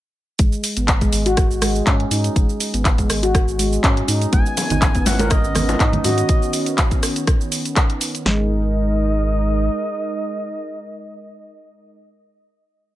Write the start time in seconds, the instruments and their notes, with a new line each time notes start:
0.39 sub bass G#1, handpan G#3, kick, closed hi-hat, shaker
0.52 shaker
0.64 open hi-hat, shaker
0.76 sub bass G#1, handpan B3, closed hi-hat, shaker
0.88 kick, clap, closed hi-hat, shaker
1.01 handpan G#3, kick, closed hi-hat, shaker
1.13 sub bass G#1, open hi-hat, shaker
1.26 handpan F#4, closed hi-hat, shaker
1.37 kick, cross-stick, closed hi-hat, shaker
1.50 sub bass G#1, shaker
1.62 handpan G#3, cross-stick, open hi-hat, shaker
1.75 shaker
1.87 sub bass G#2, handpan C#4, kick, clap, closed hi-hat, shaker
2.00 closed hi-hat
2.10 sub bass G#2, handpan D#4, open hi-hat, shaker
2.24 closed hi-hat, shaker
2.36 sub bass G#1, handpan G#3, kick, closed hi-hat, shaker
2.49 shaker
2.60 open hi-hat, shaker
2.74 sub bass G#1, handpan B3, closed hi-hat, shaker
2.85 kick, clap, closed hi-hat, shaker
2.98 handpan G#3, kick, closed hi-hat, shaker
3.09 sub bass G#1, cross-stick, open hi-hat, shaker
3.23 handpan F#4, closed hi-hat, shaker
3.35 kick, cross-stick, closed hi-hat, shaker
3.47 sub bass G#1, shaker
3.59 handpan G#3, open hi-hat, shaker
3.73 shaker
3.83 sub bass G#2, handpan C#4, kick, clap, closed hi-hat, shaker
3.97 closed hi-hat
4.08 sub bass G#2, handpan D#4, open hi-hat, shaker
4.22 closed hi-hat, shaker
4.32 sub bass G#1, analog synth pad D#3 B3 C#4, handpan B3, analog synth lead G#5, kick, closed hi-hat, low bongo, high conga, shaker
4.46 shaker
4.57 open hi-hat, low bongo, shaker
4.70 sub bass G#1, handpan D#4, closed hi-hat, low conga, shaker
4.82 kick, clap, closed hi-hat, low bongo, shaker
4.95 handpan B3, kick, closed hi-hat, shaker
5.05 sub bass G#1, analog synth lead F#5, open hi-hat, high bongo, low bongo, high conga, shaker
5.19 handpan A#4, closed hi-hat, high bongo, high conga, shaker
5.30 analog synth lead D#5, kick, cross-stick, closed hi-hat, low bongo, shaker
5.44 sub bass G#1, shaker
5.55 handpan B3, cross-stick, open hi-hat, low bongo, high conga, low conga, shaker
5.69 high bongo, shaker
5.79 sub bass G#2, handpan D#4, kick, clap, closed hi-hat, low bongo, shaker
5.93 closed hi-hat, high conga, low conga
6.04 sub bass G#2, handpan F#4, analog synth lead D#5, open hi-hat, low bongo, shaker
6.18 closed hi-hat, shaker
6.29 kick, closed hi-hat, shaker
6.42 shaker
6.53 open hi-hat, shaker
6.66 closed hi-hat, shaker
6.78 kick, clap, closed hi-hat, shaker
6.91 kick, closed hi-hat, shaker
7.03 cross-stick, open hi-hat, shaker
7.16 closed hi-hat, shaker
7.27 kick, cross-stick, closed hi-hat, shaker
7.41 shaker
7.52 open hi-hat, shaker
7.65 closed hi-hat, shaker
7.76 kick, cross-stick, clap, closed hi-hat, shaker
7.90 closed hi-hat
8.01 open hi-hat, shaker
8.15 closed hi-hat, shaker
8.25 sub bass G#1, analog synth pad G#3 D#4 A#4, handpan G#3, analog synth lead D#5, snare